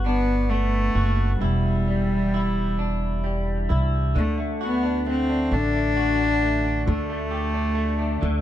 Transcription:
0, 0, Header, 1, 4, 480
1, 0, Start_track
1, 0, Tempo, 907716
1, 747, Time_signature, 6, 3, 24, 8
1, 4448, End_track
2, 0, Start_track
2, 0, Title_t, "Clean electric guitar"
2, 0, Program_c, 0, 27
2, 0, Note_on_c, 0, 55, 61
2, 0, Note_on_c, 0, 59, 46
2, 0, Note_on_c, 0, 66, 57
2, 32, Note_on_c, 0, 62, 50
2, 267, Note_off_c, 0, 59, 0
2, 269, Note_on_c, 0, 59, 49
2, 498, Note_off_c, 0, 66, 0
2, 505, Note_on_c, 0, 66, 49
2, 744, Note_on_c, 0, 40, 58
2, 746, Note_off_c, 0, 66, 0
2, 749, Note_on_c, 0, 64, 49
2, 991, Note_off_c, 0, 59, 0
2, 994, Note_off_c, 0, 55, 0
2, 994, Note_on_c, 0, 55, 48
2, 1230, Note_off_c, 0, 64, 0
2, 1237, Note_on_c, 0, 64, 57
2, 1253, Note_off_c, 0, 62, 0
2, 1474, Note_on_c, 0, 62, 45
2, 1707, Note_off_c, 0, 55, 0
2, 1713, Note_on_c, 0, 55, 45
2, 1946, Note_off_c, 0, 64, 0
2, 1952, Note_on_c, 0, 64, 47
2, 2195, Note_off_c, 0, 40, 0
2, 2195, Note_on_c, 0, 50, 62
2, 2243, Note_off_c, 0, 64, 0
2, 2244, Note_off_c, 0, 55, 0
2, 2315, Note_on_c, 0, 57, 44
2, 2437, Note_on_c, 0, 66, 53
2, 2553, Note_off_c, 0, 62, 0
2, 2555, Note_on_c, 0, 62, 55
2, 2677, Note_off_c, 0, 57, 0
2, 2680, Note_on_c, 0, 57, 53
2, 2797, Note_off_c, 0, 62, 0
2, 2799, Note_on_c, 0, 62, 48
2, 2917, Note_off_c, 0, 50, 0
2, 2919, Note_on_c, 0, 50, 65
2, 3031, Note_off_c, 0, 57, 0
2, 3033, Note_on_c, 0, 57, 45
2, 3149, Note_off_c, 0, 66, 0
2, 3156, Note_on_c, 0, 66, 57
2, 3277, Note_off_c, 0, 62, 0
2, 3279, Note_on_c, 0, 62, 50
2, 3392, Note_off_c, 0, 57, 0
2, 3394, Note_on_c, 0, 57, 51
2, 3511, Note_off_c, 0, 62, 0
2, 3513, Note_on_c, 0, 62, 53
2, 3627, Note_off_c, 0, 50, 0
2, 3629, Note_on_c, 0, 50, 57
2, 3682, Note_off_c, 0, 66, 0
2, 3750, Note_off_c, 0, 57, 0
2, 3752, Note_on_c, 0, 57, 51
2, 3866, Note_on_c, 0, 67, 50
2, 3985, Note_off_c, 0, 62, 0
2, 3987, Note_on_c, 0, 62, 54
2, 4091, Note_off_c, 0, 57, 0
2, 4098, Note_on_c, 0, 57, 49
2, 4221, Note_off_c, 0, 62, 0
2, 4224, Note_on_c, 0, 62, 48
2, 4343, Note_off_c, 0, 50, 0
2, 4345, Note_on_c, 0, 50, 69
2, 4448, Note_off_c, 0, 50, 0
2, 4448, Note_off_c, 0, 57, 0
2, 4448, Note_off_c, 0, 62, 0
2, 4448, Note_off_c, 0, 67, 0
2, 4448, End_track
3, 0, Start_track
3, 0, Title_t, "Cello"
3, 0, Program_c, 1, 42
3, 28, Note_on_c, 1, 59, 88
3, 262, Note_on_c, 1, 57, 84
3, 270, Note_off_c, 1, 59, 0
3, 735, Note_off_c, 1, 57, 0
3, 739, Note_on_c, 1, 55, 69
3, 1930, Note_off_c, 1, 55, 0
3, 2213, Note_on_c, 1, 57, 72
3, 2318, Note_off_c, 1, 57, 0
3, 2455, Note_on_c, 1, 59, 83
3, 2670, Note_off_c, 1, 59, 0
3, 2695, Note_on_c, 1, 60, 87
3, 2928, Note_on_c, 1, 62, 96
3, 2936, Note_off_c, 1, 60, 0
3, 3641, Note_off_c, 1, 62, 0
3, 3646, Note_on_c, 1, 57, 81
3, 4448, Note_off_c, 1, 57, 0
3, 4448, End_track
4, 0, Start_track
4, 0, Title_t, "Upright bass"
4, 0, Program_c, 2, 32
4, 0, Note_on_c, 2, 31, 80
4, 483, Note_off_c, 2, 31, 0
4, 503, Note_on_c, 2, 30, 63
4, 730, Note_off_c, 2, 30, 0
4, 747, Note_on_c, 2, 28, 75
4, 1934, Note_off_c, 2, 28, 0
4, 1957, Note_on_c, 2, 36, 72
4, 2182, Note_off_c, 2, 36, 0
4, 2198, Note_on_c, 2, 38, 82
4, 2896, Note_off_c, 2, 38, 0
4, 2916, Note_on_c, 2, 33, 69
4, 3614, Note_off_c, 2, 33, 0
4, 3635, Note_on_c, 2, 38, 85
4, 4330, Note_off_c, 2, 38, 0
4, 4350, Note_on_c, 2, 38, 82
4, 4448, Note_off_c, 2, 38, 0
4, 4448, End_track
0, 0, End_of_file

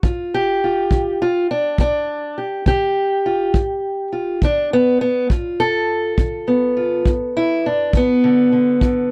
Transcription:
0, 0, Header, 1, 3, 480
1, 0, Start_track
1, 0, Tempo, 585938
1, 32, Time_signature, 12, 3, 24, 8
1, 7467, End_track
2, 0, Start_track
2, 0, Title_t, "Steel-string acoustic guitar"
2, 0, Program_c, 0, 25
2, 27, Note_on_c, 0, 43, 68
2, 33, Note_on_c, 0, 65, 44
2, 282, Note_on_c, 0, 67, 93
2, 461, Note_off_c, 0, 43, 0
2, 520, Note_off_c, 0, 65, 0
2, 524, Note_on_c, 0, 65, 47
2, 748, Note_on_c, 0, 50, 57
2, 994, Note_off_c, 0, 65, 0
2, 996, Note_off_c, 0, 67, 0
2, 997, Note_on_c, 0, 65, 81
2, 1181, Note_off_c, 0, 50, 0
2, 1232, Note_off_c, 0, 65, 0
2, 1235, Note_on_c, 0, 62, 88
2, 1470, Note_off_c, 0, 62, 0
2, 1475, Note_on_c, 0, 43, 73
2, 1480, Note_on_c, 0, 62, 93
2, 1904, Note_off_c, 0, 43, 0
2, 1947, Note_on_c, 0, 67, 43
2, 1955, Note_off_c, 0, 62, 0
2, 2178, Note_on_c, 0, 50, 55
2, 2188, Note_off_c, 0, 67, 0
2, 2192, Note_on_c, 0, 67, 98
2, 2616, Note_off_c, 0, 50, 0
2, 2669, Note_on_c, 0, 65, 48
2, 2900, Note_on_c, 0, 43, 68
2, 2924, Note_off_c, 0, 65, 0
2, 3336, Note_off_c, 0, 43, 0
2, 3379, Note_on_c, 0, 65, 48
2, 3629, Note_on_c, 0, 50, 58
2, 3630, Note_off_c, 0, 67, 0
2, 3636, Note_off_c, 0, 65, 0
2, 3640, Note_on_c, 0, 62, 77
2, 3874, Note_off_c, 0, 62, 0
2, 3877, Note_on_c, 0, 59, 97
2, 4061, Note_off_c, 0, 50, 0
2, 4095, Note_off_c, 0, 59, 0
2, 4105, Note_on_c, 0, 59, 97
2, 4347, Note_off_c, 0, 59, 0
2, 4348, Note_on_c, 0, 43, 70
2, 4354, Note_on_c, 0, 65, 49
2, 4586, Note_on_c, 0, 69, 106
2, 4780, Note_off_c, 0, 43, 0
2, 5061, Note_on_c, 0, 50, 67
2, 5305, Note_on_c, 0, 59, 54
2, 5497, Note_off_c, 0, 50, 0
2, 5540, Note_off_c, 0, 65, 0
2, 5544, Note_on_c, 0, 65, 52
2, 5791, Note_on_c, 0, 43, 68
2, 5815, Note_off_c, 0, 65, 0
2, 6027, Note_off_c, 0, 69, 0
2, 6034, Note_on_c, 0, 64, 84
2, 6222, Note_off_c, 0, 43, 0
2, 6271, Note_off_c, 0, 64, 0
2, 6277, Note_on_c, 0, 62, 70
2, 6498, Note_on_c, 0, 50, 64
2, 6513, Note_off_c, 0, 62, 0
2, 6529, Note_off_c, 0, 59, 0
2, 6529, Note_on_c, 0, 59, 95
2, 6738, Note_off_c, 0, 50, 0
2, 6748, Note_on_c, 0, 50, 49
2, 6972, Note_off_c, 0, 50, 0
2, 6982, Note_on_c, 0, 50, 42
2, 7221, Note_off_c, 0, 50, 0
2, 7226, Note_on_c, 0, 43, 74
2, 7231, Note_on_c, 0, 50, 46
2, 7467, Note_off_c, 0, 43, 0
2, 7467, Note_off_c, 0, 50, 0
2, 7467, Note_off_c, 0, 59, 0
2, 7467, End_track
3, 0, Start_track
3, 0, Title_t, "Drums"
3, 26, Note_on_c, 9, 36, 65
3, 108, Note_off_c, 9, 36, 0
3, 743, Note_on_c, 9, 36, 60
3, 825, Note_off_c, 9, 36, 0
3, 1461, Note_on_c, 9, 36, 68
3, 1543, Note_off_c, 9, 36, 0
3, 2180, Note_on_c, 9, 36, 65
3, 2262, Note_off_c, 9, 36, 0
3, 2900, Note_on_c, 9, 36, 64
3, 2982, Note_off_c, 9, 36, 0
3, 3619, Note_on_c, 9, 36, 65
3, 3701, Note_off_c, 9, 36, 0
3, 4341, Note_on_c, 9, 36, 66
3, 4423, Note_off_c, 9, 36, 0
3, 5060, Note_on_c, 9, 36, 71
3, 5142, Note_off_c, 9, 36, 0
3, 5779, Note_on_c, 9, 36, 67
3, 5861, Note_off_c, 9, 36, 0
3, 6499, Note_on_c, 9, 36, 69
3, 6581, Note_off_c, 9, 36, 0
3, 7220, Note_on_c, 9, 36, 65
3, 7302, Note_off_c, 9, 36, 0
3, 7467, End_track
0, 0, End_of_file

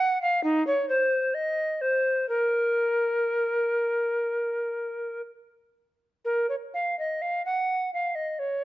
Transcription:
0, 0, Header, 1, 2, 480
1, 0, Start_track
1, 0, Key_signature, -5, "minor"
1, 0, Tempo, 888889
1, 728, Tempo, 952381
1, 1207, Time_signature, 4, 2, 24, 8
1, 1208, Tempo, 991736
1, 3128, Tempo, 936037
1, 4345, End_track
2, 0, Start_track
2, 0, Title_t, "Recorder"
2, 0, Program_c, 0, 74
2, 0, Note_on_c, 0, 78, 91
2, 115, Note_off_c, 0, 78, 0
2, 118, Note_on_c, 0, 77, 91
2, 233, Note_off_c, 0, 77, 0
2, 236, Note_on_c, 0, 63, 91
2, 357, Note_off_c, 0, 63, 0
2, 361, Note_on_c, 0, 73, 78
2, 477, Note_off_c, 0, 73, 0
2, 481, Note_on_c, 0, 72, 80
2, 725, Note_on_c, 0, 75, 84
2, 733, Note_off_c, 0, 72, 0
2, 962, Note_on_c, 0, 72, 71
2, 970, Note_off_c, 0, 75, 0
2, 1199, Note_off_c, 0, 72, 0
2, 1202, Note_on_c, 0, 70, 75
2, 2618, Note_off_c, 0, 70, 0
2, 3119, Note_on_c, 0, 70, 61
2, 3241, Note_off_c, 0, 70, 0
2, 3244, Note_on_c, 0, 73, 49
2, 3275, Note_off_c, 0, 73, 0
2, 3370, Note_on_c, 0, 77, 57
2, 3493, Note_off_c, 0, 77, 0
2, 3499, Note_on_c, 0, 75, 56
2, 3615, Note_on_c, 0, 77, 60
2, 3623, Note_off_c, 0, 75, 0
2, 3733, Note_off_c, 0, 77, 0
2, 3736, Note_on_c, 0, 78, 60
2, 3970, Note_off_c, 0, 78, 0
2, 3984, Note_on_c, 0, 77, 57
2, 4094, Note_on_c, 0, 75, 64
2, 4102, Note_off_c, 0, 77, 0
2, 4217, Note_on_c, 0, 73, 55
2, 4224, Note_off_c, 0, 75, 0
2, 4345, Note_off_c, 0, 73, 0
2, 4345, End_track
0, 0, End_of_file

